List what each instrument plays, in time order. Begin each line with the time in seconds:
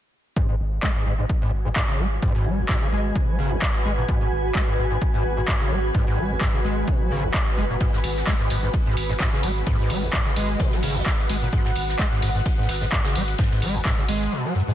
0.36 acid bass G#2, ambient pad F#4, kick
0.49 acid bass G#2
0.60 analog synth bass G#1
0.64 ambient pad G#5
0.83 acid bass G#3, kick, clap
0.93 acid bass G#2, ambient pad B4
1.06 analog synth bass G#1, acid bass G#2
1.19 acid bass G#2
1.29 kick
1.42 acid bass G#2
1.53 analog synth bass G#1
1.65 acid bass G#2
1.76 acid bass G#2, kick, clap
1.88 acid bass C#3
1.99 analog synth bass G#1, acid bass G#3
2.22 acid bass G#2, kick
2.35 acid bass G#2
2.46 analog synth bass G#1, acid bass G#3
2.58 acid bass G#1
2.69 acid bass G#2, kick, clap
2.81 acid bass C#3
2.92 analog synth bass G#1, acid bass G#3
3.15 acid bass B2, kick
3.28 acid bass F#3
3.39 analog synth bass G#1, acid bass C#3
3.51 acid bass G#1
3.62 kick, clap
3.85 analog synth bass G#1, acid bass G#3
3.98 acid bass A#2
4.09 acid bass G#2, kick
4.21 acid bass G#2
4.32 analog synth bass G#1
4.55 acid bass G#3, kick, clap
4.68 acid bass G#2
4.78 analog synth bass G#1, acid bass G#2
4.91 acid bass G#2
5.02 kick
5.14 acid bass G#2
5.25 analog synth bass G#1
5.37 acid bass G#2
5.48 acid bass G#2, kick, clap
5.61 acid bass C#3
5.71 analog synth bass G#1, acid bass G#3
5.95 acid bass G#2, kick
6.07 acid bass G#2
6.18 analog synth bass G#1, acid bass G#3
6.30 acid bass G#1
6.41 acid bass G#2, kick, clap
6.54 acid bass C#3
6.64 analog synth bass G#1, acid bass G#3
6.88 acid bass B2, kick
7.00 acid bass F#3
7.11 analog synth bass G#1, acid bass C#3
7.23 acid bass G#1
7.34 kick, clap
7.57 analog synth bass F#1, acid bass G#3
7.70 acid bass A#2
7.81 acid bass G#2, kick, ride
7.93 acid bass G#2, snare
8.04 analog synth bass G#1, open hi-hat, ride
8.17 snare
8.27 acid bass G#3, kick, snare, clap, ride
8.40 acid bass G#2
8.50 analog synth bass G#1, acid bass G#2, open hi-hat, ride
8.63 acid bass G#2
8.74 kick, ride
8.86 acid bass G#2
8.97 analog synth bass G#1, open hi-hat, ride
9.09 acid bass G#2
9.20 acid bass G#2, kick, snare, clap, ride
9.33 acid bass C#3, snare
9.43 analog synth bass G#1, acid bass G#3, open hi-hat, ride
9.58 ambient pad F#5
9.66 acid bass G#2, kick, ride
9.79 acid bass G#2
9.90 analog synth bass G#1, acid bass G#3, open hi-hat, ride
10.02 acid bass G#1
10.12 acid bass G#2, kick, snare, clap, ride
10.26 acid bass C#3
10.36 analog synth bass G#1, acid bass G#3, open hi-hat, ride
10.60 acid bass B2, kick, ride
10.72 acid bass F#3, snare
10.83 analog synth bass G#1, acid bass C#3, open hi-hat
10.95 acid bass G#1
11.06 kick, snare, clap, ride
11.18 snare
11.29 analog synth bass G#1, acid bass G#3, open hi-hat, ride
11.42 acid bass A#2
11.53 acid bass G#2, kick, ride
11.65 acid bass G#2, snare
11.75 analog synth bass G#1, open hi-hat, ride
11.88 snare
11.99 acid bass G#3, kick, snare, clap, ride
12.12 acid bass G#2
12.22 analog synth bass G#1, acid bass G#2, open hi-hat, ride
12.35 acid bass G#2
12.46 kick, ride
12.58 acid bass G#2
12.69 analog synth bass G#1, snare, open hi-hat, ride
12.81 acid bass G#2, snare
12.92 acid bass G#2, kick, clap, ride
13.05 acid bass C#3, snare, ride
13.15 analog synth bass G#1, acid bass G#3, snare, open hi-hat
13.28 ride
13.38 acid bass G#2, kick, snare, ride
13.51 acid bass G#2, snare
13.62 analog synth bass G#1, acid bass G#3, open hi-hat, ride
13.74 acid bass G#1
13.85 acid bass G#2, kick, snare, clap, ride
13.98 acid bass C#3
14.09 analog synth bass G#1, acid bass G#3, open hi-hat, ride
14.32 acid bass B2
14.44 acid bass F#3
14.55 acid bass F#2
14.67 acid bass G#2